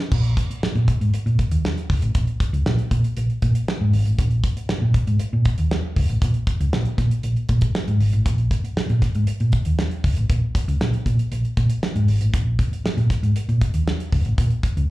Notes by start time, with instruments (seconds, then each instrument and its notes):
0.12 fingered electric bass A#1, kick, crash
0.24 closed hi-hat
0.37 kick, closed hi-hat
0.50 muted fingered electric bass stroke, closed hi-hat
0.63 muted fingered electric bass stroke, snare
0.75 fingered electric bass A#2, closed hi-hat
0.88 kick, closed hi-hat
1.01 fingered electric bass G#2, closed hi-hat
1.14 muted fingered electric bass stroke, closed hi-hat
1.26 fingered electric bass A#2, closed hi-hat
1.39 kick, closed hi-hat
1.51 fingered electric bass D#2, closed hi-hat
1.65 snare
1.78 closed hi-hat
1.90 fingered electric bass C#2, kick, open hi-hat
2.02 fingered electric bass A1, closed hi-hat
2.15 fingered electric bass A#1, kick, closed hi-hat
2.27 closed hi-hat
2.40 kick, closed hi-hat
2.53 fingered electric bass C#2, closed hi-hat
2.66 fingered electric bass A#1, snare
2.78 closed hi-hat
2.91 fingered electric bass A#2, kick, closed hi-hat
3.04 closed hi-hat
3.17 fingered electric bass A#1, closed hi-hat
3.30 closed hi-hat
3.42 fingered electric bass A#2, kick, closed hi-hat
3.55 closed hi-hat
3.68 snare
3.81 fingered electric bass G#2
3.93 fingered electric bass G#1, open hi-hat
4.05 fingered electric bass A1, closed hi-hat
4.19 fingered electric bass A#1, kick, closed hi-hat
4.31 closed hi-hat
4.44 kick, closed hi-hat
4.57 muted fingered electric bass stroke, closed hi-hat
4.69 muted fingered electric bass stroke, snare
4.82 fingered electric bass A#2
4.94 kick, closed hi-hat
5.07 fingered electric bass G#2, closed hi-hat
5.19 muted fingered electric bass stroke, closed hi-hat
5.33 fingered electric bass A#2
5.45 kick, closed hi-hat
5.58 fingered electric bass D#2, closed hi-hat
5.71 snare
5.96 fingered electric bass C#2, kick, open hi-hat
6.09 fingered electric bass A1, closed hi-hat
6.22 fingered electric bass A#1, kick, closed hi-hat
6.34 closed hi-hat
6.47 kick, closed hi-hat
6.60 fingered electric bass C#2, closed hi-hat
6.73 fingered electric bass A#1, snare
6.85 closed hi-hat
6.98 fingered electric bass A#2, kick, snare, closed hi-hat
7.11 closed hi-hat
7.23 fingered electric bass A#1, closed hi-hat
7.36 closed hi-hat
7.49 fingered electric bass A#2, kick, closed hi-hat
7.61 kick, closed hi-hat
7.75 snare
7.88 fingered electric bass G#2, closed hi-hat
8.00 fingered electric bass G#1, open hi-hat
8.13 fingered electric bass A1, closed hi-hat
8.26 fingered electric bass A#1, kick, closed hi-hat
8.38 closed hi-hat
8.51 kick, closed hi-hat
8.64 muted fingered electric bass stroke, closed hi-hat
8.77 muted fingered electric bass stroke, snare
8.89 fingered electric bass A#2, closed hi-hat
9.02 kick, snare, closed hi-hat
9.15 fingered electric bass G#2, closed hi-hat
9.27 muted fingered electric bass stroke, closed hi-hat
9.40 fingered electric bass A#2, closed hi-hat
9.52 kick, closed hi-hat
9.65 fingered electric bass D#2, closed hi-hat
9.79 snare
9.91 closed hi-hat
10.04 fingered electric bass C#2, kick, open hi-hat
10.17 fingered electric bass A1, closed hi-hat
10.30 fingered electric bass A#1, kick, closed hi-hat
10.55 kick, closed hi-hat
10.68 fingered electric bass C#2, closed hi-hat
10.81 fingered electric bass A#1, snare
10.93 closed hi-hat
11.06 fingered electric bass A#2, kick, closed hi-hat
11.19 closed hi-hat
11.31 fingered electric bass A#1, closed hi-hat
11.45 closed hi-hat
11.57 fingered electric bass A#2, kick, closed hi-hat
11.70 closed hi-hat
11.83 snare
11.96 fingered electric bass G#2, closed hi-hat
12.08 fingered electric bass G#1, open hi-hat
12.21 fingered electric bass A1, closed hi-hat
12.34 fingered electric bass A#1, kick, closed hi-hat
12.59 kick, closed hi-hat
12.72 muted fingered electric bass stroke, closed hi-hat
12.84 muted fingered electric bass stroke, snare
12.97 fingered electric bass A#2, closed hi-hat
13.10 kick, snare, closed hi-hat
13.23 fingered electric bass G#2, closed hi-hat
13.35 muted fingered electric bass stroke, closed hi-hat
13.49 fingered electric bass A#2, closed hi-hat
13.61 kick, closed hi-hat
13.74 fingered electric bass D#2, closed hi-hat
13.88 snare
14.00 closed hi-hat
14.12 fingered electric bass C#2, kick, open hi-hat
14.25 fingered electric bass A1, closed hi-hat
14.38 fingered electric bass A#1, kick, closed hi-hat
14.50 closed hi-hat
14.63 kick, closed hi-hat
14.77 fingered electric bass C#2, closed hi-hat